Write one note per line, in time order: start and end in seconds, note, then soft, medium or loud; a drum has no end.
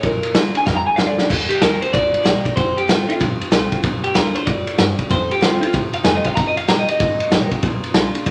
0.03 0.23 A#1 medium
0.03 0.64 A#2 medium
0.03 0.35 A#4 loud
0.03 kick loud
0.03 ride medium
0.23 muted upright bass stroke medium
0.23 ride medium
0.34 0.53 D2 medium
0.34 0.54 D3 medium
0.34 0.54 A#3 loud
0.34 0.54 D4 loud
0.34 0.53 F4 loud
0.34 snare loud
0.34 ride medium
0.54 0.67 D4 soft
0.54 0.66 F4 medium
0.54 0.66 G#5 loud
0.54 muted upright bass stroke soft
0.54 ride medium
0.66 1.27 F2 loud
0.66 0.85 F2 medium
0.66 0.76 F5 loud
0.66 kick loud
0.66 snare medium
0.76 0.86 A#5 medium
0.86 0.98 G#5 loud
0.86 muted upright bass stroke medium
0.96 1.17 E2 medium
0.96 1.17 D3 medium
0.96 1.17 A#3 medium
0.96 1.17 D4 medium
0.96 1.16 F4 loud
0.96 1.07 F5 loud
0.96 snare medium
1.07 1.28 D5 medium
1.17 1.30 D4 soft
1.17 1.29 F4 medium
1.17 muted upright bass stroke soft
1.17 snare medium
1.29 1.49 D#2 medium
1.29 1.60 D#3 medium
1.29 kick loud
1.29 crash loud
1.49 1.61 G4 loud
1.49 muted upright bass stroke medium
1.49 ride medium
1.61 1.81 D2 medium
1.61 1.81 D#3 medium
1.61 1.81 A#3 medium
1.61 1.82 D#4 loud
1.61 1.81 G4 loud
1.61 1.81 A#4 medium
1.61 snare loud
1.61 ride medium
1.82 1.94 D#4 soft
1.82 1.93 G4 medium
1.82 1.93 C5 medium
1.82 muted upright bass stroke medium
1.82 ride medium
1.93 2.12 C2 loud
1.93 2.54 A#2 medium
1.93 2.55 D5 loud
1.93 kick loud
1.93 ride medium
2.13 muted upright bass stroke medium
2.13 ride medium
2.24 2.45 A#1 medium
2.24 2.44 D#3 medium
2.24 2.44 A#3 medium
2.24 2.44 D#4 loud
2.24 2.42 G4 medium
2.24 snare loud
2.24 ride medium
2.44 2.57 D#4 medium
2.44 2.56 G4 medium
2.44 muted upright bass stroke medium
2.44 kick medium
2.44 ride medium
2.56 2.76 F1 medium
2.56 3.18 F2 medium
2.56 2.76 C5 medium
2.56 kick loud
2.56 ride medium
2.76 2.89 G4 medium
2.76 muted upright bass stroke medium
2.76 ride medium
2.87 3.07 G1 medium
2.87 3.07 D#3 medium
2.87 3.08 A3 loud
2.87 3.07 C4 loud
2.87 3.08 F4 loud
2.87 3.06 F4 loud
2.87 snare loud
2.87 ride medium
3.07 3.20 C4 medium
3.07 3.19 F4 medium
3.07 3.20 F4 loud
3.07 muted upright bass stroke soft
3.07 ride medium
3.20 3.40 A1 loud
3.20 3.81 C3 medium
3.20 kick loud
3.20 ride medium
3.41 muted upright bass stroke medium
3.41 ride medium
3.51 3.72 C2 medium
3.51 3.70 D#3 medium
3.51 3.71 A3 loud
3.51 3.71 C4 loud
3.51 3.69 F4 loud
3.51 snare loud
3.51 ride medium
3.70 3.83 C4 soft
3.70 3.82 F4 medium
3.70 muted upright bass stroke medium
3.70 kick medium
3.70 ride medium
3.83 4.03 A#1 medium
3.83 4.44 A#2 medium
3.83 kick loud
3.83 ride medium
4.04 4.16 G4 loud
4.04 muted upright bass stroke medium
4.04 ride medium
4.14 4.35 D2 medium
4.14 4.34 D3 medium
4.14 4.34 A#3 loud
4.14 4.34 D4 loud
4.14 4.33 F4 loud
4.14 4.35 A#4 loud
4.14 snare loud
4.14 ride medium
4.34 4.47 D4 soft
4.34 4.46 F4 medium
4.34 4.46 C5 medium
4.34 muted upright bass stroke medium
4.34 ride medium
4.46 4.65 F2 medium
4.46 4.77 A2 medium
4.46 5.08 D5 loud
4.46 kick loud
4.46 ride medium
4.67 muted upright bass stroke soft
4.67 ride medium
4.78 5.09 G2 medium
4.78 4.98 G2 loud
4.78 snare loud
4.78 ride medium
4.99 muted upright bass stroke medium
4.99 kick medium
4.99 ride medium
5.09 5.71 F2 medium
5.09 5.29 F2 medium
5.09 5.30 C5 medium
5.09 kick loud
5.09 ride medium
5.30 5.42 G4 loud
5.30 muted upright bass stroke medium
5.30 ride medium
5.41 5.60 G2 medium
5.41 5.60 D#3 medium
5.41 5.61 A3 loud
5.41 5.61 C4 loud
5.41 5.60 F4 loud
5.41 5.60 F4 medium
5.41 snare loud
5.41 ride medium
5.61 5.74 C4 soft
5.61 5.73 F4 medium
5.61 5.73 F4 loud
5.61 muted upright bass stroke soft
5.61 ride medium
5.73 5.93 A2 medium
5.73 6.34 C3 medium
5.73 kick loud
5.73 ride medium
5.93 6.04 F5 loud
5.93 muted upright bass stroke medium
5.93 ride medium
6.03 6.24 F2 medium
6.03 6.23 D#3 medium
6.03 6.24 A3 medium
6.03 6.24 C4 loud
6.03 6.22 F4 loud
6.03 6.15 G#5 medium
6.03 snare loud
6.03 ride medium
6.15 6.26 D#5 medium
6.24 6.36 C4 medium
6.24 6.35 F4 medium
6.24 6.35 F5 medium
6.24 muted upright bass stroke medium
6.24 kick medium
6.24 ride medium
6.35 6.66 D#3 medium
6.35 6.46 A#5 loud
6.35 kick loud
6.35 ride medium
6.47 6.57 D#5 loud
6.55 6.68 F5 medium
6.55 muted upright bass stroke soft
6.55 ride medium
6.67 6.86 A#1 loud
6.67 6.87 D#3 medium
6.67 6.87 A#3 loud
6.67 6.88 D#4 loud
6.67 6.87 G4 loud
6.67 6.79 A#5 medium
6.67 snare loud
6.67 ride medium
6.79 6.88 D#5 medium
6.88 7.00 D#4 soft
6.88 6.99 G4 medium
6.88 7.51 D#5 loud
6.88 muted upright bass stroke soft
6.88 ride medium
7.00 7.19 G1 medium
7.00 7.61 A#2 loud
7.00 kick loud
7.00 ride medium
7.20 muted upright bass stroke medium
7.20 ride medium
7.30 7.51 A1 loud
7.30 7.50 D#3 medium
7.30 7.50 A#3 medium
7.30 7.51 D#4 loud
7.30 7.49 G4 medium
7.30 snare loud
7.30 ride medium
7.50 7.63 D#4 medium
7.50 7.62 G4 medium
7.50 muted upright bass stroke medium
7.50 kick medium
7.50 ride medium
7.62 7.81 A#1 medium
7.62 8.24 A#2 medium
7.62 kick loud
7.62 ride medium
7.82 muted upright bass stroke medium
7.82 ride medium
7.94 8.13 C2 medium
7.94 8.14 D3 medium
7.94 8.14 A#3 loud
7.94 8.14 D4 loud
7.94 8.13 F4 loud
7.94 snare loud
7.94 ride medium
8.14 8.27 D4 medium
8.14 8.26 F4 medium
8.14 muted upright bass stroke medium
8.14 ride medium
8.26 8.31 D2 loud
8.26 8.31 A2 medium
8.26 kick loud
8.26 ride medium